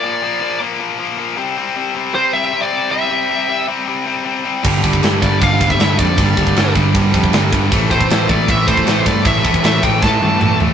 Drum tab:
CC |----------------|----------------|----------------|x---------------|
RD |----------------|----------------|----------------|--x-x-x-x-x-x-x-|
SD |----------------|----------------|----------------|----o-------o---|
T1 |----------------|----------------|----------------|----------------|
T2 |----------------|----------------|----------------|----------------|
FT |----------------|----------------|----------------|----------------|
BD |----------------|----------------|----------------|o-oo--o-o-oo--o-|

CC |----------------|----------------|----------------|
RD |x-x-x-x-x-x-x-x-|x-x-x-x-x-x-x-x-|x-x-x-x---------|
SD |----o-------o---|----o-------o---|----o---o-------|
T1 |----------------|----------------|----------o-----|
T2 |----------------|----------------|------------o---|
FT |----------------|----------------|--------------o-|
BD |o-oo--o-o-oo--o-|o-oo--o-o-oo--o-|o-oo--o-o-------|